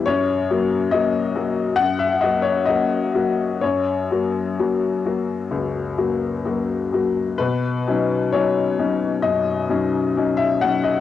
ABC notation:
X:1
M:4/4
L:1/16
Q:1/4=65
K:B
V:1 name="Upright piano"
c4 d4 f e d c d4 | c12- c2 z2 | B4 c4 d4- d e f d |]
V:2 name="Upright piano"
F,,2 [F,A,F]2 [F,A,F]2 [F,A,F]2 F,,2 [F,A,F]2 [F,A,F]2 [F,A,F]2 | F,,2 [F,A,F]2 [F,A,F]2 [F,A,F]2 C,,2 [F,A,F]2 [F,A,F]2 [F,A,F]2 | B,,2 [F,CD]2 [F,CD]2 [F,CD]2 F,,2 [F,CD]2 [F,CD]2 [F,CD]2 |]